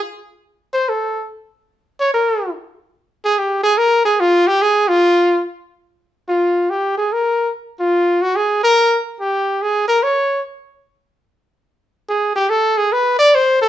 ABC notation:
X:1
M:3/4
L:1/8
Q:"Swing" 1/4=144
K:Fm
V:1 name="Trumpet"
z3 c =A2 | z3 d B2 | z3 A G A | B A F G A F- |
F2 z4 | [K:Ab] F2 G A B2 | z F2 _G A B- | B z G2 A B |
d2 z4 | z4 A G | =A _A _c =d =c =A |]